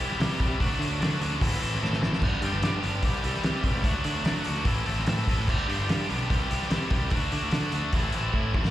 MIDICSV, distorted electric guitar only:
0, 0, Header, 1, 2, 480
1, 0, Start_track
1, 0, Key_signature, 1, "major"
1, 0, Tempo, 408163
1, 700, Time_signature, 4, 2, 24, 8
1, 10238, End_track
2, 0, Start_track
2, 0, Title_t, "Distorted electric guitar"
2, 0, Program_c, 0, 30
2, 0, Note_on_c, 0, 48, 101
2, 0, Note_on_c, 0, 52, 101
2, 0, Note_on_c, 0, 55, 95
2, 1, Note_on_c, 0, 64, 114
2, 2, Note_on_c, 0, 67, 98
2, 216, Note_off_c, 0, 48, 0
2, 222, Note_off_c, 0, 52, 0
2, 225, Note_off_c, 0, 55, 0
2, 230, Note_on_c, 0, 48, 98
2, 233, Note_off_c, 0, 64, 0
2, 236, Note_on_c, 0, 52, 91
2, 239, Note_on_c, 0, 55, 101
2, 241, Note_off_c, 0, 67, 0
2, 247, Note_on_c, 0, 64, 104
2, 255, Note_on_c, 0, 67, 104
2, 453, Note_off_c, 0, 48, 0
2, 459, Note_off_c, 0, 52, 0
2, 465, Note_off_c, 0, 55, 0
2, 467, Note_on_c, 0, 48, 75
2, 468, Note_off_c, 0, 64, 0
2, 473, Note_on_c, 0, 52, 72
2, 479, Note_off_c, 0, 67, 0
2, 479, Note_on_c, 0, 55, 85
2, 482, Note_on_c, 0, 64, 86
2, 493, Note_on_c, 0, 67, 80
2, 688, Note_off_c, 0, 48, 0
2, 692, Note_off_c, 0, 52, 0
2, 692, Note_on_c, 0, 50, 95
2, 695, Note_off_c, 0, 55, 0
2, 697, Note_off_c, 0, 64, 0
2, 702, Note_off_c, 0, 67, 0
2, 705, Note_on_c, 0, 57, 105
2, 707, Note_on_c, 0, 54, 95
2, 712, Note_on_c, 0, 66, 105
2, 715, Note_on_c, 0, 62, 103
2, 914, Note_off_c, 0, 50, 0
2, 921, Note_off_c, 0, 54, 0
2, 921, Note_off_c, 0, 57, 0
2, 928, Note_on_c, 0, 50, 95
2, 929, Note_off_c, 0, 62, 0
2, 933, Note_off_c, 0, 66, 0
2, 935, Note_on_c, 0, 54, 97
2, 935, Note_on_c, 0, 57, 96
2, 943, Note_on_c, 0, 62, 94
2, 947, Note_on_c, 0, 66, 85
2, 1162, Note_off_c, 0, 50, 0
2, 1165, Note_off_c, 0, 54, 0
2, 1176, Note_off_c, 0, 57, 0
2, 1176, Note_on_c, 0, 50, 97
2, 1179, Note_on_c, 0, 54, 99
2, 1180, Note_off_c, 0, 62, 0
2, 1185, Note_off_c, 0, 66, 0
2, 1190, Note_on_c, 0, 57, 90
2, 1195, Note_on_c, 0, 62, 104
2, 1199, Note_on_c, 0, 66, 99
2, 1397, Note_off_c, 0, 50, 0
2, 1407, Note_off_c, 0, 54, 0
2, 1411, Note_on_c, 0, 50, 95
2, 1416, Note_off_c, 0, 57, 0
2, 1421, Note_on_c, 0, 54, 102
2, 1422, Note_off_c, 0, 62, 0
2, 1423, Note_off_c, 0, 66, 0
2, 1430, Note_on_c, 0, 57, 99
2, 1436, Note_on_c, 0, 62, 106
2, 1437, Note_on_c, 0, 66, 106
2, 1641, Note_off_c, 0, 50, 0
2, 1646, Note_off_c, 0, 54, 0
2, 1650, Note_off_c, 0, 57, 0
2, 1653, Note_off_c, 0, 62, 0
2, 1654, Note_off_c, 0, 66, 0
2, 1665, Note_on_c, 0, 45, 91
2, 1669, Note_on_c, 0, 52, 84
2, 1677, Note_on_c, 0, 60, 96
2, 1679, Note_on_c, 0, 64, 108
2, 1684, Note_on_c, 0, 69, 107
2, 1874, Note_off_c, 0, 45, 0
2, 1885, Note_off_c, 0, 60, 0
2, 1886, Note_off_c, 0, 52, 0
2, 1888, Note_on_c, 0, 45, 99
2, 1898, Note_off_c, 0, 64, 0
2, 1899, Note_on_c, 0, 60, 101
2, 1900, Note_on_c, 0, 52, 96
2, 1903, Note_off_c, 0, 69, 0
2, 1912, Note_on_c, 0, 64, 103
2, 1917, Note_on_c, 0, 69, 109
2, 2114, Note_off_c, 0, 45, 0
2, 2118, Note_off_c, 0, 52, 0
2, 2121, Note_off_c, 0, 60, 0
2, 2128, Note_off_c, 0, 64, 0
2, 2128, Note_on_c, 0, 45, 87
2, 2132, Note_on_c, 0, 52, 84
2, 2134, Note_off_c, 0, 69, 0
2, 2135, Note_on_c, 0, 60, 100
2, 2142, Note_on_c, 0, 64, 94
2, 2148, Note_on_c, 0, 69, 97
2, 2349, Note_off_c, 0, 45, 0
2, 2357, Note_off_c, 0, 52, 0
2, 2360, Note_off_c, 0, 64, 0
2, 2361, Note_off_c, 0, 60, 0
2, 2363, Note_on_c, 0, 45, 77
2, 2371, Note_on_c, 0, 52, 74
2, 2374, Note_off_c, 0, 69, 0
2, 2374, Note_on_c, 0, 64, 80
2, 2375, Note_on_c, 0, 60, 81
2, 2388, Note_on_c, 0, 69, 90
2, 2596, Note_off_c, 0, 45, 0
2, 2600, Note_off_c, 0, 52, 0
2, 2602, Note_off_c, 0, 60, 0
2, 2602, Note_off_c, 0, 64, 0
2, 2605, Note_on_c, 0, 43, 100
2, 2609, Note_off_c, 0, 69, 0
2, 2616, Note_on_c, 0, 50, 99
2, 2618, Note_on_c, 0, 55, 112
2, 2626, Note_on_c, 0, 59, 109
2, 2628, Note_on_c, 0, 62, 100
2, 2636, Note_on_c, 0, 67, 95
2, 2833, Note_off_c, 0, 43, 0
2, 2843, Note_off_c, 0, 50, 0
2, 2847, Note_off_c, 0, 55, 0
2, 2847, Note_on_c, 0, 43, 84
2, 2852, Note_off_c, 0, 62, 0
2, 2855, Note_off_c, 0, 59, 0
2, 2857, Note_on_c, 0, 50, 83
2, 2862, Note_on_c, 0, 55, 89
2, 2864, Note_off_c, 0, 67, 0
2, 2866, Note_on_c, 0, 62, 98
2, 2869, Note_on_c, 0, 59, 98
2, 2878, Note_on_c, 0, 67, 103
2, 3061, Note_off_c, 0, 43, 0
2, 3072, Note_off_c, 0, 55, 0
2, 3074, Note_off_c, 0, 50, 0
2, 3075, Note_on_c, 0, 43, 99
2, 3081, Note_off_c, 0, 62, 0
2, 3086, Note_on_c, 0, 55, 98
2, 3087, Note_off_c, 0, 59, 0
2, 3088, Note_on_c, 0, 50, 104
2, 3095, Note_off_c, 0, 67, 0
2, 3095, Note_on_c, 0, 62, 99
2, 3101, Note_on_c, 0, 59, 99
2, 3110, Note_on_c, 0, 67, 105
2, 3306, Note_off_c, 0, 43, 0
2, 3308, Note_off_c, 0, 50, 0
2, 3316, Note_off_c, 0, 55, 0
2, 3320, Note_on_c, 0, 43, 94
2, 3322, Note_on_c, 0, 50, 99
2, 3324, Note_off_c, 0, 59, 0
2, 3324, Note_off_c, 0, 62, 0
2, 3330, Note_off_c, 0, 67, 0
2, 3330, Note_on_c, 0, 55, 97
2, 3338, Note_on_c, 0, 59, 103
2, 3338, Note_on_c, 0, 62, 106
2, 3344, Note_on_c, 0, 67, 101
2, 3554, Note_off_c, 0, 43, 0
2, 3555, Note_off_c, 0, 50, 0
2, 3559, Note_off_c, 0, 55, 0
2, 3563, Note_off_c, 0, 59, 0
2, 3563, Note_off_c, 0, 62, 0
2, 3566, Note_off_c, 0, 67, 0
2, 3571, Note_on_c, 0, 52, 94
2, 3574, Note_on_c, 0, 48, 91
2, 3580, Note_on_c, 0, 55, 99
2, 3586, Note_on_c, 0, 64, 106
2, 3589, Note_on_c, 0, 67, 109
2, 3785, Note_off_c, 0, 48, 0
2, 3795, Note_off_c, 0, 52, 0
2, 3798, Note_off_c, 0, 55, 0
2, 3799, Note_on_c, 0, 48, 94
2, 3808, Note_off_c, 0, 64, 0
2, 3809, Note_on_c, 0, 52, 100
2, 3812, Note_off_c, 0, 67, 0
2, 3812, Note_on_c, 0, 55, 110
2, 3822, Note_on_c, 0, 64, 104
2, 3826, Note_on_c, 0, 67, 99
2, 4022, Note_off_c, 0, 48, 0
2, 4025, Note_off_c, 0, 52, 0
2, 4029, Note_off_c, 0, 55, 0
2, 4033, Note_off_c, 0, 64, 0
2, 4036, Note_on_c, 0, 48, 90
2, 4037, Note_off_c, 0, 67, 0
2, 4039, Note_on_c, 0, 52, 90
2, 4043, Note_on_c, 0, 55, 104
2, 4047, Note_on_c, 0, 64, 94
2, 4051, Note_on_c, 0, 67, 110
2, 4254, Note_off_c, 0, 48, 0
2, 4262, Note_off_c, 0, 55, 0
2, 4264, Note_off_c, 0, 52, 0
2, 4268, Note_on_c, 0, 48, 78
2, 4271, Note_off_c, 0, 64, 0
2, 4276, Note_off_c, 0, 67, 0
2, 4276, Note_on_c, 0, 55, 84
2, 4278, Note_on_c, 0, 52, 81
2, 4285, Note_on_c, 0, 64, 80
2, 4291, Note_on_c, 0, 67, 89
2, 4506, Note_off_c, 0, 52, 0
2, 4507, Note_off_c, 0, 48, 0
2, 4511, Note_on_c, 0, 54, 101
2, 4512, Note_off_c, 0, 55, 0
2, 4512, Note_on_c, 0, 50, 106
2, 4516, Note_off_c, 0, 64, 0
2, 4518, Note_on_c, 0, 57, 109
2, 4519, Note_off_c, 0, 67, 0
2, 4525, Note_on_c, 0, 62, 105
2, 4528, Note_on_c, 0, 66, 107
2, 4733, Note_off_c, 0, 50, 0
2, 4735, Note_off_c, 0, 54, 0
2, 4741, Note_off_c, 0, 57, 0
2, 4746, Note_off_c, 0, 62, 0
2, 4747, Note_on_c, 0, 50, 91
2, 4749, Note_on_c, 0, 54, 94
2, 4753, Note_off_c, 0, 66, 0
2, 4756, Note_on_c, 0, 57, 87
2, 4760, Note_on_c, 0, 62, 101
2, 4767, Note_on_c, 0, 66, 93
2, 4969, Note_off_c, 0, 50, 0
2, 4975, Note_off_c, 0, 54, 0
2, 4976, Note_off_c, 0, 57, 0
2, 4983, Note_on_c, 0, 50, 92
2, 4988, Note_off_c, 0, 62, 0
2, 4989, Note_on_c, 0, 54, 107
2, 4990, Note_on_c, 0, 57, 87
2, 4992, Note_off_c, 0, 66, 0
2, 5002, Note_on_c, 0, 62, 98
2, 5006, Note_on_c, 0, 66, 101
2, 5213, Note_off_c, 0, 50, 0
2, 5217, Note_off_c, 0, 54, 0
2, 5224, Note_off_c, 0, 62, 0
2, 5227, Note_on_c, 0, 50, 100
2, 5230, Note_off_c, 0, 57, 0
2, 5232, Note_on_c, 0, 54, 99
2, 5237, Note_off_c, 0, 66, 0
2, 5238, Note_on_c, 0, 62, 98
2, 5244, Note_on_c, 0, 57, 105
2, 5251, Note_on_c, 0, 66, 112
2, 5463, Note_off_c, 0, 50, 0
2, 5467, Note_off_c, 0, 54, 0
2, 5467, Note_on_c, 0, 45, 98
2, 5471, Note_off_c, 0, 57, 0
2, 5472, Note_on_c, 0, 52, 105
2, 5473, Note_off_c, 0, 62, 0
2, 5476, Note_on_c, 0, 60, 101
2, 5479, Note_off_c, 0, 66, 0
2, 5485, Note_on_c, 0, 64, 108
2, 5491, Note_on_c, 0, 69, 116
2, 5693, Note_off_c, 0, 45, 0
2, 5694, Note_off_c, 0, 52, 0
2, 5707, Note_off_c, 0, 60, 0
2, 5707, Note_on_c, 0, 45, 93
2, 5708, Note_on_c, 0, 52, 93
2, 5709, Note_off_c, 0, 64, 0
2, 5715, Note_off_c, 0, 69, 0
2, 5721, Note_on_c, 0, 60, 102
2, 5724, Note_on_c, 0, 64, 107
2, 5729, Note_on_c, 0, 69, 119
2, 5943, Note_off_c, 0, 45, 0
2, 5956, Note_off_c, 0, 52, 0
2, 5958, Note_on_c, 0, 45, 94
2, 5964, Note_off_c, 0, 60, 0
2, 5970, Note_off_c, 0, 64, 0
2, 5970, Note_on_c, 0, 52, 92
2, 5971, Note_off_c, 0, 69, 0
2, 5978, Note_on_c, 0, 60, 90
2, 5984, Note_on_c, 0, 64, 99
2, 5985, Note_on_c, 0, 69, 100
2, 6189, Note_off_c, 0, 45, 0
2, 6200, Note_off_c, 0, 52, 0
2, 6203, Note_on_c, 0, 45, 83
2, 6205, Note_off_c, 0, 60, 0
2, 6212, Note_off_c, 0, 64, 0
2, 6214, Note_on_c, 0, 52, 80
2, 6219, Note_off_c, 0, 69, 0
2, 6219, Note_on_c, 0, 60, 95
2, 6226, Note_on_c, 0, 64, 87
2, 6234, Note_on_c, 0, 69, 99
2, 6435, Note_off_c, 0, 45, 0
2, 6440, Note_off_c, 0, 52, 0
2, 6443, Note_off_c, 0, 60, 0
2, 6446, Note_off_c, 0, 64, 0
2, 6447, Note_on_c, 0, 43, 109
2, 6450, Note_off_c, 0, 69, 0
2, 6452, Note_on_c, 0, 50, 103
2, 6454, Note_on_c, 0, 55, 100
2, 6464, Note_on_c, 0, 59, 99
2, 6466, Note_on_c, 0, 62, 108
2, 6467, Note_on_c, 0, 67, 105
2, 6667, Note_off_c, 0, 43, 0
2, 6670, Note_off_c, 0, 50, 0
2, 6675, Note_off_c, 0, 55, 0
2, 6681, Note_off_c, 0, 59, 0
2, 6681, Note_on_c, 0, 43, 82
2, 6684, Note_on_c, 0, 50, 93
2, 6688, Note_off_c, 0, 62, 0
2, 6688, Note_off_c, 0, 67, 0
2, 6689, Note_on_c, 0, 55, 93
2, 6695, Note_on_c, 0, 59, 94
2, 6702, Note_on_c, 0, 62, 102
2, 6702, Note_on_c, 0, 67, 109
2, 6898, Note_off_c, 0, 43, 0
2, 6903, Note_off_c, 0, 55, 0
2, 6907, Note_off_c, 0, 50, 0
2, 6909, Note_off_c, 0, 59, 0
2, 6912, Note_on_c, 0, 43, 97
2, 6915, Note_off_c, 0, 62, 0
2, 6917, Note_on_c, 0, 55, 95
2, 6921, Note_on_c, 0, 50, 106
2, 6923, Note_off_c, 0, 67, 0
2, 6923, Note_on_c, 0, 59, 96
2, 6930, Note_on_c, 0, 62, 108
2, 6937, Note_on_c, 0, 67, 104
2, 7136, Note_off_c, 0, 43, 0
2, 7145, Note_off_c, 0, 50, 0
2, 7149, Note_off_c, 0, 55, 0
2, 7150, Note_on_c, 0, 43, 103
2, 7153, Note_off_c, 0, 62, 0
2, 7157, Note_off_c, 0, 59, 0
2, 7160, Note_on_c, 0, 50, 99
2, 7163, Note_off_c, 0, 67, 0
2, 7163, Note_on_c, 0, 55, 87
2, 7167, Note_on_c, 0, 62, 108
2, 7171, Note_on_c, 0, 59, 103
2, 7177, Note_on_c, 0, 67, 110
2, 7384, Note_off_c, 0, 50, 0
2, 7385, Note_off_c, 0, 55, 0
2, 7388, Note_off_c, 0, 43, 0
2, 7388, Note_on_c, 0, 48, 96
2, 7391, Note_on_c, 0, 52, 90
2, 7392, Note_off_c, 0, 67, 0
2, 7395, Note_off_c, 0, 59, 0
2, 7397, Note_off_c, 0, 62, 0
2, 7399, Note_on_c, 0, 55, 95
2, 7406, Note_on_c, 0, 67, 107
2, 7408, Note_on_c, 0, 64, 105
2, 7615, Note_off_c, 0, 48, 0
2, 7618, Note_off_c, 0, 52, 0
2, 7629, Note_off_c, 0, 55, 0
2, 7629, Note_on_c, 0, 48, 101
2, 7631, Note_off_c, 0, 64, 0
2, 7632, Note_on_c, 0, 52, 95
2, 7639, Note_off_c, 0, 67, 0
2, 7643, Note_on_c, 0, 55, 108
2, 7645, Note_on_c, 0, 64, 96
2, 7653, Note_on_c, 0, 67, 107
2, 7859, Note_off_c, 0, 48, 0
2, 7863, Note_off_c, 0, 52, 0
2, 7870, Note_off_c, 0, 55, 0
2, 7871, Note_off_c, 0, 64, 0
2, 7873, Note_on_c, 0, 48, 95
2, 7877, Note_on_c, 0, 52, 93
2, 7878, Note_off_c, 0, 67, 0
2, 7884, Note_on_c, 0, 55, 83
2, 7885, Note_on_c, 0, 64, 97
2, 7893, Note_on_c, 0, 67, 98
2, 8101, Note_off_c, 0, 48, 0
2, 8110, Note_off_c, 0, 52, 0
2, 8115, Note_on_c, 0, 48, 87
2, 8117, Note_off_c, 0, 55, 0
2, 8123, Note_off_c, 0, 64, 0
2, 8124, Note_off_c, 0, 67, 0
2, 8125, Note_on_c, 0, 52, 87
2, 8131, Note_on_c, 0, 55, 88
2, 8137, Note_on_c, 0, 64, 78
2, 8138, Note_on_c, 0, 67, 91
2, 8351, Note_off_c, 0, 48, 0
2, 8354, Note_off_c, 0, 52, 0
2, 8358, Note_on_c, 0, 50, 106
2, 8359, Note_off_c, 0, 55, 0
2, 8362, Note_off_c, 0, 64, 0
2, 8363, Note_off_c, 0, 67, 0
2, 8369, Note_on_c, 0, 57, 102
2, 8369, Note_on_c, 0, 62, 107
2, 8370, Note_on_c, 0, 66, 112
2, 8591, Note_off_c, 0, 50, 0
2, 8592, Note_off_c, 0, 57, 0
2, 8600, Note_off_c, 0, 62, 0
2, 8601, Note_off_c, 0, 66, 0
2, 8605, Note_on_c, 0, 50, 79
2, 8606, Note_on_c, 0, 57, 93
2, 8614, Note_on_c, 0, 62, 99
2, 8615, Note_on_c, 0, 66, 109
2, 8824, Note_off_c, 0, 50, 0
2, 8835, Note_off_c, 0, 57, 0
2, 8838, Note_on_c, 0, 50, 87
2, 8843, Note_off_c, 0, 66, 0
2, 8844, Note_off_c, 0, 62, 0
2, 8849, Note_on_c, 0, 57, 90
2, 8858, Note_on_c, 0, 66, 99
2, 8859, Note_on_c, 0, 62, 96
2, 9077, Note_off_c, 0, 50, 0
2, 9085, Note_off_c, 0, 57, 0
2, 9091, Note_off_c, 0, 62, 0
2, 9091, Note_on_c, 0, 50, 103
2, 9092, Note_off_c, 0, 66, 0
2, 9099, Note_on_c, 0, 57, 98
2, 9105, Note_on_c, 0, 62, 94
2, 9106, Note_on_c, 0, 66, 101
2, 9321, Note_off_c, 0, 50, 0
2, 9324, Note_on_c, 0, 45, 88
2, 9325, Note_off_c, 0, 57, 0
2, 9328, Note_off_c, 0, 62, 0
2, 9328, Note_off_c, 0, 66, 0
2, 9337, Note_on_c, 0, 52, 97
2, 9342, Note_on_c, 0, 57, 111
2, 9344, Note_on_c, 0, 60, 112
2, 9353, Note_on_c, 0, 64, 112
2, 9562, Note_off_c, 0, 45, 0
2, 9567, Note_off_c, 0, 52, 0
2, 9573, Note_off_c, 0, 57, 0
2, 9576, Note_on_c, 0, 45, 104
2, 9581, Note_on_c, 0, 52, 99
2, 9582, Note_off_c, 0, 60, 0
2, 9583, Note_off_c, 0, 64, 0
2, 9587, Note_on_c, 0, 57, 89
2, 9597, Note_on_c, 0, 60, 106
2, 9597, Note_on_c, 0, 64, 94
2, 9798, Note_off_c, 0, 45, 0
2, 9807, Note_off_c, 0, 57, 0
2, 9808, Note_off_c, 0, 52, 0
2, 9812, Note_on_c, 0, 45, 86
2, 9815, Note_off_c, 0, 60, 0
2, 9817, Note_off_c, 0, 64, 0
2, 9821, Note_on_c, 0, 57, 105
2, 9822, Note_on_c, 0, 52, 91
2, 9829, Note_on_c, 0, 60, 101
2, 9831, Note_on_c, 0, 64, 107
2, 10038, Note_off_c, 0, 45, 0
2, 10045, Note_off_c, 0, 52, 0
2, 10046, Note_off_c, 0, 57, 0
2, 10049, Note_off_c, 0, 60, 0
2, 10052, Note_on_c, 0, 45, 77
2, 10059, Note_off_c, 0, 64, 0
2, 10059, Note_on_c, 0, 52, 75
2, 10060, Note_on_c, 0, 57, 82
2, 10063, Note_on_c, 0, 60, 90
2, 10073, Note_on_c, 0, 64, 82
2, 10238, Note_off_c, 0, 45, 0
2, 10238, Note_off_c, 0, 52, 0
2, 10238, Note_off_c, 0, 57, 0
2, 10238, Note_off_c, 0, 60, 0
2, 10238, Note_off_c, 0, 64, 0
2, 10238, End_track
0, 0, End_of_file